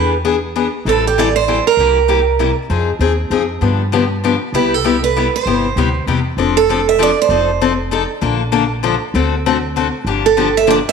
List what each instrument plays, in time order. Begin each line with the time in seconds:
Already playing: upright bass E2, steel-string acoustic guitar E3 B3 D4 G#4 B4
0.25 steel-string acoustic guitar E3 B3 D4 G#4
0.56 steel-string acoustic guitar E3 B3 D4 G#4
0.85 upright bass A1, steel-string acoustic guitar E3 G3 C4 E4 A4
1.07 steel-string acoustic guitar G4
1.18 steel-string acoustic guitar E3 G3 C4 E4 A4 D5
1.36 steel-string acoustic guitar C5
1.48 steel-string acoustic guitar E3 G3 C4 E4 A4
1.67 steel-string acoustic guitar A#4
1.77 upright bass C2, steel-string acoustic guitar C3 G3 A#3 E4 G4
2.08 steel-string acoustic guitar C3 G3 A#3 E4 G4
2.39 steel-string acoustic guitar C3 G3 A#3 E4 G4
2.70 upright bass F2, steel-string acoustic guitar F3 C4 D#4 G#4
2.99 upright bass D#2, steel-string acoustic guitar F3 C4 D#4 G#4
3.30 upright bass F2, steel-string acoustic guitar F3 C4 D#4 G#4
3.61 upright bass G2, steel-string acoustic guitar D3 F3 B3 D4 G4
3.92 steel-string acoustic guitar D3 F3 B3 D4 G4
4.24 steel-string acoustic guitar D3 F3 B3 D4 G4
4.53 upright bass C2, steel-string acoustic guitar C3 G3 B3 E4 G4 B4
4.74 steel-string acoustic guitar A4
4.84 steel-string acoustic guitar C3 G3 B3 E4 G4
5.04 steel-string acoustic guitar B4
5.16 steel-string acoustic guitar C3 G3 B3 E4 G4
5.36 steel-string acoustic guitar C5
5.46 upright bass G1, steel-string acoustic guitar C3 G3 B3 E4 G4
5.76 upright bass D2, steel-string acoustic guitar C3 G3 B3 E4 G4
6.07 upright bass E2, steel-string acoustic guitar C3 G3 B3 E4 G4
6.37 upright bass F1, steel-string acoustic guitar F3 C4 D4 A4
6.57 steel-string acoustic guitar A4
6.69 steel-string acoustic guitar F3 C4 D4 A4
6.89 steel-string acoustic guitar E5
6.99 steel-string acoustic guitar F3 C4 D4 A4 D5
7.22 steel-string acoustic guitar C5
7.29 upright bass F1, steel-string acoustic guitar F3 C4 D#4 A4
7.61 steel-string acoustic guitar F3 C4 D#4 A4
7.91 steel-string acoustic guitar F3 C4 D#4 A4
8.21 upright bass A#1, steel-string acoustic guitar D3 F3 A#3 D4 A4
8.52 steel-string acoustic guitar D3 F3 A#3 D4 A4
8.83 steel-string acoustic guitar D3 F3 A#3 D4 A4
9.14 upright bass D2, steel-string acoustic guitar D3 A3 C4 F#4 A4
9.46 steel-string acoustic guitar D3 A3 C4 F#4 A4
9.76 steel-string acoustic guitar D3 A3 C4 F#4 A4
10.05 upright bass G1, steel-string acoustic guitar D3 F3 A#3 D4 G4
10.26 steel-string acoustic guitar A4
10.37 steel-string acoustic guitar D3 F3 A#3 D4 G4
10.57 steel-string acoustic guitar E5
10.67 steel-string acoustic guitar D3 F3 A#3 D4 G4 D5
10.89 steel-string acoustic guitar E5